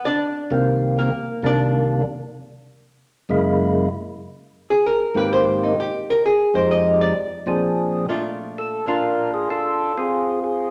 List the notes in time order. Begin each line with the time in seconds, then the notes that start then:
0.05 D4 D5
0.50 C2 C3 D#3 A#3 C4
0.99 A#3 A#4
1.43 C2 C3 D#3 A#3 D4 D5
3.29 F#2 C#3 G#3 A#3 E4
4.70 G#4
4.86 A#4
5.15 G#2 D#3 A#3 C4 G4 B4
5.33 C5
5.63 D#4
5.80 G4
6.10 A#4
6.26 G#4
6.54 F2 F3 G#3 D#4 G4 C5
6.71 D#5
7.01 D5
7.46 A#2 F3 C4 D4 G#4
8.09 A#2 A3 D4 F4
8.58 A4
8.86 A#2 D4 F4 A#4
9.34 G#4
9.50 D4 F4 A4
9.97 C4 F4 G#4
10.44 G#4